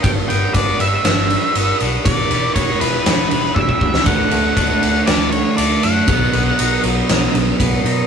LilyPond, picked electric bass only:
\new Staff \with { instrumentName = "Picked electric bass" } { \clef bass \time 4/4 \key d \lydian \tempo 4 = 119 g,,8 g,,8 g,,8 g,,8 g,,4 g,,8 b,,8 | e,,8 e,,8 e,,8 e,,8 e,,8 e,,8 e,,8 cis,8 | d,8 d,8 d,8 d,8 d,4 d,8 fis,8 | b,,8 b,,8 b,,8 b,,8 b,,8 b,,8 b,,8 b,8 | }